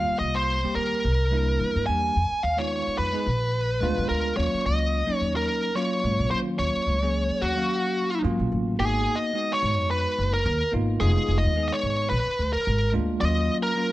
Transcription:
Already playing: tine electric piano G3 A#3 C4 F4, lead electric guitar F5
0.09 muted upright bass stroke
0.19 upright bass C2, lead electric guitar D#5
0.35 lead electric guitar C5
0.64 tine electric piano G3 A#3 C4 G4, muted upright bass stroke
0.75 upright bass D#2, lead electric guitar A#4
1.05 upright bass C2
1.31 tine electric piano G3 A#3 D4 E4
1.61 upright bass E2
1.76 upright bass G2
1.86 upright bass E2, tine electric piano G3 A#3 D4 G4, lead electric guitar G#5
2.16 upright bass F2
2.31 muted upright bass stroke
2.43 upright bass D#2, lead electric guitar F5
2.57 tine electric piano G#3 B3 D#4 F4, lead electric guitar C#5
2.87 muted upright bass stroke
2.98 upright bass F2, lead electric guitar B4
3.13 tine electric piano G#3 B3 D#4 G#4
3.26 upright bass A#1
3.81 upright bass D2, tine electric piano G#3 B3 D4 F4
3.98 upright bass F2
4.09 upright bass D2, lead electric guitar A#4
4.36 upright bass D#2, tine electric piano F#3 A#3 C#4 F4, lead electric guitar C#5
4.54 muted upright bass stroke
4.66 upright bass C#2, lead electric guitar D#5
5.07 tine electric piano F#3 A#3 C#4 D#4, muted upright bass stroke
5.16 lead electric guitar C#5
5.21 upright bass D#2
5.36 lead electric guitar A#4
5.75 tine electric piano F#3 A#3 C#4 F4, lead electric guitar C#5
6.04 upright bass G#2
6.19 upright bass A#1
6.30 upright bass D#3, tine electric piano F#3 A#3 C#4 F4, lead electric guitar C5
6.59 upright bass D#2, lead electric guitar C#5
6.75 muted upright bass stroke
6.87 upright bass C#2
7.01 tine electric piano F#3 A#3 C#4 G#4
7.30 muted upright bass stroke
7.42 upright bass D#2, lead electric guitar F#4
7.56 tine electric piano F#3 A#3 C#4 F5
8.23 upright bass G#2, tine electric piano F#3 A#3 C#4 F4
8.39 upright bass A#1
8.52 upright bass A1
8.79 upright bass G#1, tine electric piano A#3 B3 D#4 F#4, lead electric guitar G#4
9.15 lead electric guitar D#5
9.34 tine electric piano G#3 B3 D#4 F#4
9.53 lead electric guitar C#5
9.63 upright bass G#2
9.78 upright bass F2
9.91 lead electric guitar B4
10.18 upright bass F#1
10.34 lead electric guitar A#4
10.46 upright bass D#2
10.72 upright bass G#1, tine electric piano A#3 B3 D#4 F4
11.00 upright bass F1, tine electric piano G#3 B3 D#4 F4, lead electric guitar G#4
11.29 upright bass F1
11.38 lead electric guitar D#5
11.44 upright bass D#2
11.56 tine electric piano G#3 B3 D#4 G#4
11.68 lead electric guitar D#5
11.73 lead electric guitar C#5
11.83 upright bass G#1
12.10 upright bass A#1, lead electric guitar B4
12.27 muted upright bass stroke
12.39 upright bass D2
12.53 lead electric guitar A#4, muted upright bass stroke
12.67 upright bass G#1
12.93 upright bass D2, tine electric piano G#3 A#3 D4 F4
13.20 upright bass D#2, tine electric piano F#3 A#3 C#4 F4, lead electric guitar D#5
13.63 lead electric guitar A#4
13.75 tine electric piano F#3 A#3 C#4 F4

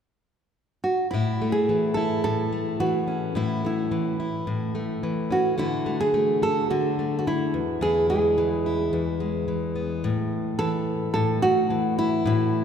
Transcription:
0.84 nylon-string guitar F#4
1.11 steel-string acoustic guitar A2 E4, nylon-string guitar E4
1.42 steel-string acoustic guitar A3
1.52 nylon-string guitar G#4
1.69 steel-string acoustic guitar E3
1.94 steel-string acoustic guitar E4, nylon-string guitar A4
2.24 steel-string acoustic guitar A2, nylon-string guitar A4
2.52 steel-string acoustic guitar A3
2.80 steel-string acoustic guitar E3, nylon-string guitar F#4
3.07 steel-string acoustic guitar C#4
3.35 steel-string acoustic guitar A2 E4, nylon-string guitar E4
3.65 steel-string acoustic guitar A3, nylon-string guitar E4
3.91 steel-string acoustic guitar E3
4.20 steel-string acoustic guitar E4
4.47 steel-string acoustic guitar A2
4.75 steel-string acoustic guitar A3
5.03 steel-string acoustic guitar E3
5.30 steel-string acoustic guitar C#4, nylon-string guitar F#4
5.58 steel-string acoustic guitar D3 F#4, nylon-string guitar E4
5.86 steel-string acoustic guitar A3
6.00 nylon-string guitar G#4
6.14 steel-string acoustic guitar A3
6.42 steel-string acoustic guitar F#4, nylon-string guitar A4
6.70 steel-string acoustic guitar D3, nylon-string guitar F#4
6.99 steel-string acoustic guitar A3
7.19 nylon-string guitar F#4
7.27 steel-string acoustic guitar A3, nylon-string guitar E4
7.54 steel-string acoustic guitar E2
7.81 steel-string acoustic guitar E2 E4, nylon-string guitar G#4
8.10 steel-string acoustic guitar G#3, nylon-string guitar G#4
8.38 steel-string acoustic guitar E3
8.66 steel-string acoustic guitar E4
8.93 steel-string acoustic guitar E2
9.20 steel-string acoustic guitar G#3
9.48 steel-string acoustic guitar E3
9.76 steel-string acoustic guitar B3
10.04 steel-string acoustic guitar A2
10.59 steel-string acoustic guitar E3, nylon-string guitar A4
11.14 steel-string acoustic guitar A2, nylon-string guitar A4
11.42 steel-string acoustic guitar A3, nylon-string guitar F#4
11.70 steel-string acoustic guitar E3
11.99 nylon-string guitar E4, steel-string acoustic guitar E4
12.26 steel-string acoustic guitar A2, nylon-string guitar E4

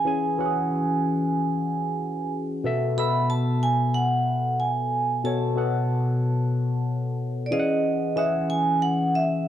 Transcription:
Already playing: vibraphone G#5
0.05 tine electric piano E3 C#4 G#4 G#5
0.38 tine electric piano E3 C#4 F#4 F#5
0.46 tine electric piano G#4
2.64 tine electric piano B2 B3 A4 E5
2.97 tine electric piano B2 B3 A4 E5, vibraphone B5
3.30 vibraphone A5
3.63 vibraphone G#5
3.94 vibraphone F#5
4.60 vibraphone G#5
5.23 tine electric piano B2 B3 A4 C#5, vibraphone A5
5.55 tine electric piano B2 B3 A4 F#5
7.46 vibraphone D5
7.51 tine electric piano E3 C#4 G#4 F5, vibraphone D#5
7.60 tine electric piano F#5
8.16 tine electric piano E3 C#4 G#4 F#5, vibraphone E5
8.50 vibraphone G#5
8.82 vibraphone F#5
9.15 vibraphone E5

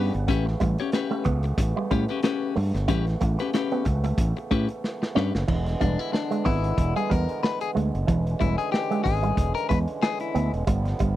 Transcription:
Already playing: harmonium C#3 E3 G3 B3, clean electric guitar C#4 G4
0.00 clean electric guitar B4
0.14 fingered electric bass G1, muted clean electric guitar stroke, closed hi-hat
0.28 fingered electric bass A1, clean electric guitar A3 C#4 G4 B4, harmonium A3, kick, closed hi-hat
0.47 muted clean electric guitar stroke, snare
0.60 fingered electric bass A1, clean electric guitar G3, muted clean electric guitar stroke, kick, closed hi-hat
0.78 clean electric guitar C#4 G4 C#5, closed hi-hat
0.92 clean electric guitar C#4 G4 B4, muted clean electric guitar stroke, snare, closed hi-hat
1.11 clean electric guitar A3, closed hi-hat
1.25 fingered electric bass C#2, clean electric guitar B3, muted clean electric guitar stroke, kick, closed hi-hat
1.43 muted clean electric guitar stroke, closed hi-hat
1.58 fingered electric bass A1, muted clean electric guitar stroke, kick, closed hi-hat
1.76 clean electric guitar G3, muted clean electric guitar stroke
1.91 fingered electric bass A2, clean electric guitar G3 C#4 G4 B4, kick, closed hi-hat
2.08 clean electric guitar C#4 G4 B4, closed hi-hat
2.23 clean electric guitar C#4 G4 B4, snare, closed hi-hat
2.56 fingered electric bass G2, clean electric guitar A3, muted clean electric guitar stroke, open hi-hat
2.74 fingered electric bass G1, muted clean electric guitar stroke, snare, closed hi-hat
2.88 fingered electric bass A1, clean electric guitar G3 C#4 G4 B4, kick, closed hi-hat
3.07 muted clean electric guitar stroke, snare, closed hi-hat
3.21 fingered electric bass A1, clean electric guitar A3, muted clean electric guitar stroke, kick, closed hi-hat
3.39 clean electric guitar C#4 G4 B4, muted clean electric guitar stroke, closed hi-hat
3.53 clean electric guitar C#4 G4 B4, snare, closed hi-hat
3.71 clean electric guitar B3, closed hi-hat
3.85 fingered electric bass C#2, muted clean electric guitar stroke, kick, closed hi-hat
4.04 clean electric guitar A3, muted clean electric guitar stroke, closed hi-hat
4.18 fingered electric bass A1, kick, closed hi-hat
4.37 muted clean electric guitar stroke, closed hi-hat
4.51 fingered electric bass A2, clean electric guitar A3 C#4 G4 B4, kick, closed hi-hat
4.68 muted clean electric guitar stroke, closed hi-hat
4.84 snare
5.02 muted clean electric guitar stroke, snare
5.15 fingered electric bass G2, clean electric guitar C#4 G4 B4, snare
5.35 fingered electric bass F#1, muted clean electric guitar stroke, snare
5.47 fingered electric bass E1, harmonium D3 E3 G#3 B3, clean electric guitar E3, kick, crash
5.66 muted clean electric guitar stroke, snare, closed hi-hat
5.81 fingered electric bass E1, clean electric guitar G3 D4, kick, closed hi-hat
5.99 clean electric guitar E4, closed hi-hat
6.13 clean electric guitar D4, muted clean electric guitar stroke, snare
6.31 clean electric guitar G#3, closed hi-hat
6.45 fingered electric bass G#1, clean electric guitar B3 E4, kick, open hi-hat
6.64 closed hi-hat
6.78 fingered electric bass E1, muted clean electric guitar stroke, kick, closed hi-hat
6.96 clean electric guitar G3 G#4, closed hi-hat
7.10 fingered electric bass E2, clean electric guitar G3 A#4, kick, closed hi-hat
7.29 closed hi-hat
7.43 clean electric guitar B4, snare
7.61 clean electric guitar G#4, closed hi-hat
7.75 fingered electric bass D2, clean electric guitar G#3, closed hi-hat
7.95 fingered electric bass F#1, closed hi-hat
8.07 fingered electric bass E1, clean electric guitar E3, harmonium C#4, kick, closed hi-hat
8.27 closed hi-hat
8.40 fingered electric bass E1, clean electric guitar G3 E4, kick, closed hi-hat
8.58 clean electric guitar G#4, muted clean electric guitar stroke, closed hi-hat
8.72 clean electric guitar G4, snare
8.91 clean electric guitar G#3, closed hi-hat
9.04 fingered electric bass G#1, clean electric guitar G#4, muted clean electric guitar stroke, kick, open hi-hat
9.23 clean electric guitar G3, closed hi-hat
9.37 fingered electric bass E1, kick, closed hi-hat
9.55 clean electric guitar A#4, closed hi-hat
9.69 fingered electric bass E2, clean electric guitar G#3 B4, kick, closed hi-hat
9.88 closed hi-hat
10.02 clean electric guitar G#4, snare
10.20 clean electric guitar E4, closed hi-hat
10.35 fingered electric bass D2, clean electric guitar B3, closed hi-hat
10.53 fingered electric bass E1, closed hi-hat
10.67 fingered electric bass G1, harmonium F3 G3 B3, clean electric guitar G3, kick, closed hi-hat
10.85 muted clean electric guitar stroke, snare, closed hi-hat
10.99 fingered electric bass G1, clean electric guitar G3, kick, closed hi-hat

